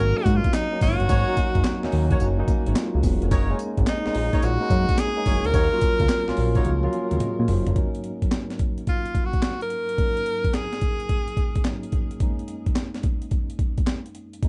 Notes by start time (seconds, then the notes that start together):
Already playing: F#3 A#3 C#4 D#4 F#4 A#4
0.00 G#1
0.16 F#3 A#3 C#4 D#4 F#4
0.26 G#2, kick, closed hi-hat, tambourine
0.36 F4
0.44 kick, closed hi-hat
0.53 D#4, snare, clap, closed hi-hat, tambourine
0.72 F#3 A#3 C#4 D#4
0.81 G#1 F#4 G#4 A#4 C#5, kick, open hi-hat, tambourine
1.00 G1, closed hi-hat
1.09 G#1 F#4 G#4 A#4 C#5, kick, closed hi-hat, tambourine
1.28 F#3 A#3 C#4 D#4
1.37 kick, closed hi-hat, tambourine
1.55 F#1, kick, closed hi-hat
1.64 snare, clap, closed hi-hat, tambourine
1.83 D#2 F#3 A#3 C#4 D#4, snare
1.92 D#2, open hi-hat
2.11 F#4 G#4 A#4 C#5, kick, closed hi-hat
2.20 F#1, closed hi-hat, tambourine
2.38 F#3 A#3 C#4 D#4
2.48 F#3 D#4, kick, closed hi-hat, tambourine
2.66 G#1, closed hi-hat
2.75 G#3 F4, snare, clap, closed hi-hat, tambourine
2.95 C#2 A#3 F#4
3.03 E1 C4 G#4, kick, open hi-hat, tambourine
3.22 F1 C#4 A#4, closed hi-hat
3.31 F#1 D#4 F#4 A#4 C#5, kick, closed hi-hat, tambourine
3.50 G#3 A#3 C#4 D#4
3.59 closed hi-hat, tambourine
3.77 G#1, kick, closed hi-hat
3.87 D#4, snare, clap, closed hi-hat, tambourine
4.05 A#1 G#3 A#3 C#4 D#4, snare
4.15 A#1, open hi-hat
4.33 D#4 F#4 A#4 C#5, kick, closed hi-hat
4.42 A#1 F#4, closed hi-hat, tambourine
4.61 G#3 A#3 C#4 D#4
4.70 F#2, kick, closed hi-hat, tambourine
4.89 kick, closed hi-hat
4.98 G#4, snare, clap, closed hi-hat, tambourine
5.17 G#3 A#3 C#4 D#4
5.25 F#1 D#4 F#4 A#4 C#5, kick, open hi-hat, tambourine
5.45 D2 A#4, closed hi-hat
5.53 D#2 D#4 F4 F#4 C#5, kick, closed hi-hat, tambourine
5.72 F#3 A#3 C#4 F4
5.81 kick, closed hi-hat, tambourine
6.00 C#2, kick, closed hi-hat
6.09 snare, clap, closed hi-hat, tambourine
6.28 A#1 F#3 A#3 C#4 F4, snare
6.37 A#1, open hi-hat
6.55 D#4 F4 F#4 C#5, kick, closed hi-hat
6.65 C#2, closed hi-hat, high tom
6.83 F#3 A#3 C#4 F4, high tom
6.93 closed hi-hat
7.11 D#2 G#4 F5, closed hi-hat, mid tom
7.20 F#4 D#5, closed hi-hat, mid tom
7.39 A#2 F4 C#5
7.48 F#1 D#4 C5, floor tom, open hi-hat
7.67 G1 C#4 A#4, closed hi-hat, floor tom
7.75 G#2 F#3 A#3 C#4 D#4, kick, closed hi-hat
7.95 closed hi-hat
8.04 closed hi-hat
8.22 kick, closed hi-hat
8.31 snare, clap, closed hi-hat
8.50 snare, closed hi-hat
8.59 kick, closed hi-hat
8.78 closed hi-hat
8.87 F4, kick, closed hi-hat
9.05 closed hi-hat
9.15 kick, closed hi-hat
9.25 F#4
9.33 kick, closed hi-hat
9.42 snare, clap, closed hi-hat
9.61 A#4, closed hi-hat
9.70 closed hi-hat
9.89 closed hi-hat
9.98 G#2 F#3 A#3 C#4 D#4, kick, closed hi-hat
10.17 closed hi-hat
10.26 closed hi-hat
10.44 kick, closed hi-hat
10.54 G#4, snare, clap, closed hi-hat
10.73 snare, closed hi-hat
10.81 kick, closed hi-hat
11.00 closed hi-hat
11.09 kick, closed hi-hat
11.28 closed hi-hat
11.37 kick, closed hi-hat
11.55 kick, closed hi-hat
11.64 G#2 F#3 A#3 C#4 D#4, snare, clap, closed hi-hat
11.83 closed hi-hat
11.92 kick, closed hi-hat
12.11 closed hi-hat
12.20 F#2 G#3 A#3 C#4 D#4, kick, closed hi-hat
12.39 closed hi-hat
12.48 closed hi-hat
12.66 kick, closed hi-hat
12.76 snare, clap, closed hi-hat
12.94 snare, closed hi-hat
13.03 kick, closed hi-hat
13.22 closed hi-hat
13.31 kick, closed hi-hat
13.50 closed hi-hat
13.59 kick, closed hi-hat
13.78 kick, closed hi-hat
13.87 snare, clap, closed hi-hat
14.06 closed hi-hat
14.15 closed hi-hat
14.33 closed hi-hat
14.42 F#2 G#3 A3 C#4 D#4, kick, closed hi-hat